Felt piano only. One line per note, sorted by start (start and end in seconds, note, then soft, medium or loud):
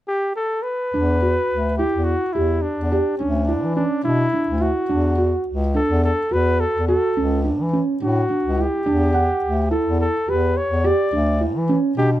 0.94 1.14 D4 medium
1.22 1.63 F#4 medium
1.79 2.20 E4 medium
2.35 2.77 G4 medium
2.92 3.13 G4 medium
3.20 3.41 D4 medium
3.48 3.69 E4 medium
3.77 3.98 C#4 medium
4.04 4.26 D4 medium
4.33 4.54 D4 medium
4.61 4.82 E4 medium
4.89 5.10 D4 medium
5.18 5.60 F#4 medium
5.74 6.16 D4 medium
6.31 6.73 F#4 medium
6.88 7.09 F#4 medium
7.17 7.38 C#4 medium
7.44 7.65 D4 medium
7.73 7.94 C#4 medium
8.02 8.23 D4 medium
8.30 8.51 D4 medium
8.57 8.79 E4 medium
8.86 9.07 D4 medium
9.14 9.56 F#5 medium
9.71 10.13 E4 medium
10.28 10.70 G4 medium
10.84 11.05 G4 medium
11.13 11.34 D4 medium
11.41 11.62 E4 medium
11.69 11.90 C#4 medium
11.97 12.18 D4 medium